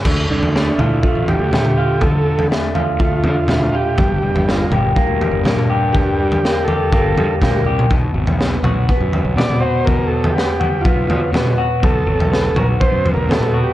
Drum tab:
CC |x---------------|----------------|----------------|----------------|
SD |----o-------o---|----o-------o---|----o-------o---|----o-------o---|
T2 |------o-----oo--|------------oo--|------o-----oo--|------------o--o|
FT |o--o--o---o-o---|o--o--o---o-o---|o--o--o---o-o---|o--o--o---o-o---|
BD |o-------o-------|o-------o-------|o-------o-------|o-------o---o---|

CC |----------------|----------------|----------------|
SD |----o-------o---|----o-------o---|----o-------o---|
T2 |------o-----oo--|------------oo--|------o-----oo--|
FT |o--o--o---o-o---|o--o--o---o-o---|o--o--o---o-o---|
BD |o-------o-------|o-------o-------|o-------o-------|